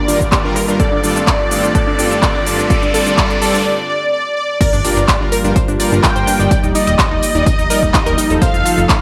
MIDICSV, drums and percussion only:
0, 0, Header, 1, 2, 480
1, 0, Start_track
1, 0, Key_signature, -2, "minor"
1, 0, Tempo, 476190
1, 803, Time_signature, 4, 2, 24, 8
1, 9087, End_track
2, 0, Start_track
2, 0, Title_t, "Drums"
2, 83, Note_on_c, 9, 46, 103
2, 89, Note_on_c, 9, 82, 82
2, 184, Note_off_c, 9, 46, 0
2, 190, Note_off_c, 9, 82, 0
2, 208, Note_on_c, 9, 36, 59
2, 208, Note_on_c, 9, 42, 49
2, 214, Note_on_c, 9, 82, 45
2, 309, Note_off_c, 9, 36, 0
2, 309, Note_off_c, 9, 42, 0
2, 315, Note_off_c, 9, 82, 0
2, 323, Note_on_c, 9, 36, 115
2, 323, Note_on_c, 9, 39, 111
2, 324, Note_on_c, 9, 42, 74
2, 330, Note_on_c, 9, 82, 35
2, 424, Note_off_c, 9, 36, 0
2, 424, Note_off_c, 9, 39, 0
2, 425, Note_off_c, 9, 42, 0
2, 431, Note_off_c, 9, 82, 0
2, 564, Note_on_c, 9, 46, 106
2, 570, Note_on_c, 9, 82, 82
2, 665, Note_off_c, 9, 46, 0
2, 671, Note_off_c, 9, 82, 0
2, 689, Note_on_c, 9, 42, 52
2, 695, Note_on_c, 9, 82, 46
2, 790, Note_off_c, 9, 42, 0
2, 796, Note_off_c, 9, 82, 0
2, 803, Note_on_c, 9, 36, 113
2, 803, Note_on_c, 9, 42, 83
2, 810, Note_on_c, 9, 82, 35
2, 904, Note_off_c, 9, 36, 0
2, 904, Note_off_c, 9, 42, 0
2, 910, Note_off_c, 9, 82, 0
2, 1043, Note_on_c, 9, 46, 93
2, 1049, Note_on_c, 9, 82, 77
2, 1144, Note_off_c, 9, 46, 0
2, 1150, Note_off_c, 9, 82, 0
2, 1169, Note_on_c, 9, 42, 56
2, 1175, Note_on_c, 9, 82, 48
2, 1270, Note_off_c, 9, 42, 0
2, 1276, Note_off_c, 9, 82, 0
2, 1283, Note_on_c, 9, 36, 115
2, 1283, Note_on_c, 9, 39, 120
2, 1284, Note_on_c, 9, 42, 84
2, 1290, Note_on_c, 9, 82, 36
2, 1384, Note_off_c, 9, 36, 0
2, 1384, Note_off_c, 9, 39, 0
2, 1385, Note_off_c, 9, 42, 0
2, 1391, Note_off_c, 9, 82, 0
2, 1524, Note_on_c, 9, 46, 97
2, 1530, Note_on_c, 9, 82, 80
2, 1624, Note_off_c, 9, 46, 0
2, 1630, Note_off_c, 9, 82, 0
2, 1648, Note_on_c, 9, 42, 55
2, 1655, Note_on_c, 9, 82, 47
2, 1749, Note_off_c, 9, 42, 0
2, 1755, Note_off_c, 9, 82, 0
2, 1763, Note_on_c, 9, 36, 113
2, 1764, Note_on_c, 9, 42, 80
2, 1770, Note_on_c, 9, 82, 35
2, 1864, Note_off_c, 9, 36, 0
2, 1864, Note_off_c, 9, 42, 0
2, 1870, Note_off_c, 9, 82, 0
2, 2003, Note_on_c, 9, 46, 103
2, 2009, Note_on_c, 9, 82, 86
2, 2104, Note_off_c, 9, 46, 0
2, 2110, Note_off_c, 9, 82, 0
2, 2128, Note_on_c, 9, 42, 53
2, 2134, Note_on_c, 9, 82, 46
2, 2229, Note_off_c, 9, 42, 0
2, 2235, Note_off_c, 9, 82, 0
2, 2243, Note_on_c, 9, 36, 111
2, 2244, Note_on_c, 9, 39, 115
2, 2244, Note_on_c, 9, 42, 80
2, 2250, Note_on_c, 9, 82, 35
2, 2344, Note_off_c, 9, 36, 0
2, 2344, Note_off_c, 9, 39, 0
2, 2345, Note_off_c, 9, 42, 0
2, 2351, Note_off_c, 9, 82, 0
2, 2484, Note_on_c, 9, 46, 104
2, 2490, Note_on_c, 9, 82, 81
2, 2585, Note_off_c, 9, 46, 0
2, 2591, Note_off_c, 9, 82, 0
2, 2609, Note_on_c, 9, 42, 55
2, 2615, Note_on_c, 9, 82, 48
2, 2710, Note_off_c, 9, 42, 0
2, 2716, Note_off_c, 9, 82, 0
2, 2723, Note_on_c, 9, 36, 119
2, 2725, Note_on_c, 9, 42, 86
2, 2731, Note_on_c, 9, 82, 36
2, 2824, Note_off_c, 9, 36, 0
2, 2826, Note_off_c, 9, 42, 0
2, 2832, Note_off_c, 9, 82, 0
2, 2849, Note_on_c, 9, 42, 39
2, 2950, Note_off_c, 9, 42, 0
2, 2964, Note_on_c, 9, 46, 97
2, 2970, Note_on_c, 9, 82, 76
2, 3065, Note_off_c, 9, 46, 0
2, 3071, Note_off_c, 9, 82, 0
2, 3089, Note_on_c, 9, 42, 57
2, 3095, Note_on_c, 9, 82, 47
2, 3190, Note_off_c, 9, 42, 0
2, 3196, Note_off_c, 9, 82, 0
2, 3203, Note_on_c, 9, 36, 116
2, 3204, Note_on_c, 9, 39, 120
2, 3204, Note_on_c, 9, 42, 86
2, 3210, Note_on_c, 9, 82, 35
2, 3304, Note_off_c, 9, 36, 0
2, 3305, Note_off_c, 9, 39, 0
2, 3305, Note_off_c, 9, 42, 0
2, 3311, Note_off_c, 9, 82, 0
2, 3329, Note_on_c, 9, 42, 40
2, 3430, Note_off_c, 9, 42, 0
2, 3445, Note_on_c, 9, 46, 98
2, 3451, Note_on_c, 9, 82, 77
2, 3545, Note_off_c, 9, 46, 0
2, 3551, Note_off_c, 9, 82, 0
2, 3569, Note_on_c, 9, 46, 61
2, 3575, Note_on_c, 9, 82, 48
2, 3670, Note_off_c, 9, 46, 0
2, 3676, Note_off_c, 9, 82, 0
2, 4643, Note_on_c, 9, 36, 117
2, 4644, Note_on_c, 9, 42, 71
2, 4644, Note_on_c, 9, 49, 106
2, 4644, Note_on_c, 9, 54, 91
2, 4650, Note_on_c, 9, 82, 45
2, 4744, Note_off_c, 9, 36, 0
2, 4745, Note_off_c, 9, 42, 0
2, 4745, Note_off_c, 9, 49, 0
2, 4745, Note_off_c, 9, 54, 0
2, 4751, Note_off_c, 9, 82, 0
2, 4769, Note_on_c, 9, 42, 39
2, 4775, Note_on_c, 9, 82, 30
2, 4869, Note_off_c, 9, 42, 0
2, 4875, Note_off_c, 9, 82, 0
2, 4884, Note_on_c, 9, 46, 103
2, 4884, Note_on_c, 9, 54, 66
2, 4890, Note_on_c, 9, 82, 72
2, 4985, Note_off_c, 9, 46, 0
2, 4985, Note_off_c, 9, 54, 0
2, 4991, Note_off_c, 9, 82, 0
2, 5009, Note_on_c, 9, 42, 57
2, 5015, Note_on_c, 9, 82, 35
2, 5109, Note_off_c, 9, 42, 0
2, 5115, Note_off_c, 9, 82, 0
2, 5123, Note_on_c, 9, 36, 120
2, 5123, Note_on_c, 9, 38, 116
2, 5123, Note_on_c, 9, 39, 124
2, 5123, Note_on_c, 9, 54, 88
2, 5124, Note_on_c, 9, 42, 69
2, 5130, Note_on_c, 9, 82, 44
2, 5224, Note_off_c, 9, 36, 0
2, 5224, Note_off_c, 9, 38, 0
2, 5224, Note_off_c, 9, 39, 0
2, 5224, Note_off_c, 9, 42, 0
2, 5224, Note_off_c, 9, 54, 0
2, 5230, Note_off_c, 9, 82, 0
2, 5363, Note_on_c, 9, 46, 104
2, 5363, Note_on_c, 9, 54, 70
2, 5369, Note_on_c, 9, 82, 75
2, 5464, Note_off_c, 9, 46, 0
2, 5464, Note_off_c, 9, 54, 0
2, 5470, Note_off_c, 9, 82, 0
2, 5488, Note_on_c, 9, 42, 55
2, 5494, Note_on_c, 9, 82, 34
2, 5589, Note_off_c, 9, 42, 0
2, 5595, Note_off_c, 9, 82, 0
2, 5602, Note_on_c, 9, 54, 87
2, 5603, Note_on_c, 9, 36, 122
2, 5603, Note_on_c, 9, 42, 68
2, 5609, Note_on_c, 9, 82, 45
2, 5703, Note_off_c, 9, 54, 0
2, 5704, Note_off_c, 9, 36, 0
2, 5704, Note_off_c, 9, 42, 0
2, 5710, Note_off_c, 9, 82, 0
2, 5728, Note_on_c, 9, 42, 39
2, 5734, Note_on_c, 9, 82, 31
2, 5829, Note_off_c, 9, 42, 0
2, 5835, Note_off_c, 9, 82, 0
2, 5843, Note_on_c, 9, 46, 107
2, 5843, Note_on_c, 9, 54, 69
2, 5849, Note_on_c, 9, 82, 78
2, 5944, Note_off_c, 9, 46, 0
2, 5944, Note_off_c, 9, 54, 0
2, 5950, Note_off_c, 9, 82, 0
2, 5969, Note_on_c, 9, 42, 54
2, 5975, Note_on_c, 9, 82, 33
2, 6069, Note_off_c, 9, 42, 0
2, 6075, Note_off_c, 9, 82, 0
2, 6082, Note_on_c, 9, 38, 116
2, 6082, Note_on_c, 9, 54, 86
2, 6083, Note_on_c, 9, 36, 115
2, 6083, Note_on_c, 9, 39, 122
2, 6083, Note_on_c, 9, 42, 66
2, 6090, Note_on_c, 9, 82, 44
2, 6183, Note_off_c, 9, 38, 0
2, 6183, Note_off_c, 9, 54, 0
2, 6184, Note_off_c, 9, 36, 0
2, 6184, Note_off_c, 9, 39, 0
2, 6184, Note_off_c, 9, 42, 0
2, 6190, Note_off_c, 9, 82, 0
2, 6208, Note_on_c, 9, 42, 39
2, 6214, Note_on_c, 9, 82, 31
2, 6309, Note_off_c, 9, 42, 0
2, 6315, Note_off_c, 9, 82, 0
2, 6322, Note_on_c, 9, 54, 69
2, 6323, Note_on_c, 9, 46, 109
2, 6329, Note_on_c, 9, 82, 80
2, 6423, Note_off_c, 9, 54, 0
2, 6424, Note_off_c, 9, 46, 0
2, 6430, Note_off_c, 9, 82, 0
2, 6448, Note_on_c, 9, 42, 54
2, 6454, Note_on_c, 9, 82, 34
2, 6549, Note_off_c, 9, 42, 0
2, 6555, Note_off_c, 9, 82, 0
2, 6562, Note_on_c, 9, 54, 90
2, 6563, Note_on_c, 9, 36, 126
2, 6563, Note_on_c, 9, 42, 69
2, 6569, Note_on_c, 9, 82, 45
2, 6663, Note_off_c, 9, 54, 0
2, 6664, Note_off_c, 9, 36, 0
2, 6664, Note_off_c, 9, 42, 0
2, 6670, Note_off_c, 9, 82, 0
2, 6688, Note_on_c, 9, 42, 38
2, 6694, Note_on_c, 9, 82, 30
2, 6789, Note_off_c, 9, 42, 0
2, 6795, Note_off_c, 9, 82, 0
2, 6803, Note_on_c, 9, 54, 67
2, 6804, Note_on_c, 9, 46, 108
2, 6810, Note_on_c, 9, 82, 70
2, 6903, Note_off_c, 9, 54, 0
2, 6904, Note_off_c, 9, 46, 0
2, 6910, Note_off_c, 9, 82, 0
2, 6928, Note_on_c, 9, 42, 56
2, 6934, Note_on_c, 9, 82, 32
2, 7029, Note_off_c, 9, 42, 0
2, 7035, Note_off_c, 9, 82, 0
2, 7043, Note_on_c, 9, 38, 113
2, 7043, Note_on_c, 9, 39, 126
2, 7043, Note_on_c, 9, 54, 88
2, 7044, Note_on_c, 9, 36, 122
2, 7044, Note_on_c, 9, 42, 68
2, 7050, Note_on_c, 9, 82, 44
2, 7144, Note_off_c, 9, 36, 0
2, 7144, Note_off_c, 9, 38, 0
2, 7144, Note_off_c, 9, 39, 0
2, 7144, Note_off_c, 9, 54, 0
2, 7145, Note_off_c, 9, 42, 0
2, 7151, Note_off_c, 9, 82, 0
2, 7284, Note_on_c, 9, 46, 107
2, 7284, Note_on_c, 9, 54, 71
2, 7290, Note_on_c, 9, 82, 74
2, 7385, Note_off_c, 9, 46, 0
2, 7385, Note_off_c, 9, 54, 0
2, 7391, Note_off_c, 9, 82, 0
2, 7409, Note_on_c, 9, 42, 53
2, 7415, Note_on_c, 9, 82, 33
2, 7509, Note_off_c, 9, 42, 0
2, 7515, Note_off_c, 9, 82, 0
2, 7524, Note_on_c, 9, 36, 127
2, 7524, Note_on_c, 9, 42, 65
2, 7524, Note_on_c, 9, 54, 87
2, 7530, Note_on_c, 9, 82, 43
2, 7625, Note_off_c, 9, 36, 0
2, 7625, Note_off_c, 9, 42, 0
2, 7625, Note_off_c, 9, 54, 0
2, 7631, Note_off_c, 9, 82, 0
2, 7649, Note_on_c, 9, 42, 38
2, 7655, Note_on_c, 9, 82, 30
2, 7750, Note_off_c, 9, 42, 0
2, 7756, Note_off_c, 9, 82, 0
2, 7764, Note_on_c, 9, 46, 109
2, 7764, Note_on_c, 9, 54, 69
2, 7770, Note_on_c, 9, 82, 78
2, 7864, Note_off_c, 9, 46, 0
2, 7865, Note_off_c, 9, 54, 0
2, 7870, Note_off_c, 9, 82, 0
2, 7889, Note_on_c, 9, 36, 64
2, 7895, Note_on_c, 9, 82, 33
2, 7990, Note_off_c, 9, 36, 0
2, 7996, Note_off_c, 9, 82, 0
2, 8003, Note_on_c, 9, 39, 122
2, 8004, Note_on_c, 9, 36, 118
2, 8004, Note_on_c, 9, 38, 115
2, 8004, Note_on_c, 9, 42, 67
2, 8004, Note_on_c, 9, 54, 89
2, 8010, Note_on_c, 9, 82, 43
2, 8104, Note_off_c, 9, 39, 0
2, 8105, Note_off_c, 9, 36, 0
2, 8105, Note_off_c, 9, 38, 0
2, 8105, Note_off_c, 9, 42, 0
2, 8105, Note_off_c, 9, 54, 0
2, 8111, Note_off_c, 9, 82, 0
2, 8129, Note_on_c, 9, 42, 39
2, 8135, Note_on_c, 9, 82, 31
2, 8229, Note_off_c, 9, 42, 0
2, 8235, Note_off_c, 9, 82, 0
2, 8244, Note_on_c, 9, 46, 114
2, 8245, Note_on_c, 9, 54, 70
2, 8250, Note_on_c, 9, 82, 75
2, 8345, Note_off_c, 9, 46, 0
2, 8346, Note_off_c, 9, 54, 0
2, 8351, Note_off_c, 9, 82, 0
2, 8369, Note_on_c, 9, 42, 54
2, 8375, Note_on_c, 9, 82, 33
2, 8469, Note_off_c, 9, 42, 0
2, 8475, Note_off_c, 9, 82, 0
2, 8484, Note_on_c, 9, 36, 127
2, 8484, Note_on_c, 9, 42, 66
2, 8486, Note_on_c, 9, 54, 91
2, 8490, Note_on_c, 9, 82, 43
2, 8585, Note_off_c, 9, 36, 0
2, 8585, Note_off_c, 9, 42, 0
2, 8586, Note_off_c, 9, 54, 0
2, 8591, Note_off_c, 9, 82, 0
2, 8610, Note_on_c, 9, 42, 36
2, 8616, Note_on_c, 9, 82, 30
2, 8710, Note_off_c, 9, 42, 0
2, 8716, Note_off_c, 9, 82, 0
2, 8725, Note_on_c, 9, 46, 106
2, 8725, Note_on_c, 9, 54, 68
2, 8731, Note_on_c, 9, 82, 73
2, 8826, Note_off_c, 9, 46, 0
2, 8826, Note_off_c, 9, 54, 0
2, 8832, Note_off_c, 9, 82, 0
2, 8849, Note_on_c, 9, 42, 52
2, 8855, Note_on_c, 9, 82, 33
2, 8950, Note_off_c, 9, 42, 0
2, 8956, Note_off_c, 9, 82, 0
2, 8964, Note_on_c, 9, 36, 124
2, 8964, Note_on_c, 9, 39, 125
2, 8964, Note_on_c, 9, 42, 67
2, 8965, Note_on_c, 9, 38, 112
2, 8965, Note_on_c, 9, 54, 92
2, 8970, Note_on_c, 9, 82, 43
2, 9065, Note_off_c, 9, 36, 0
2, 9065, Note_off_c, 9, 38, 0
2, 9065, Note_off_c, 9, 39, 0
2, 9065, Note_off_c, 9, 42, 0
2, 9065, Note_off_c, 9, 54, 0
2, 9071, Note_off_c, 9, 82, 0
2, 9087, End_track
0, 0, End_of_file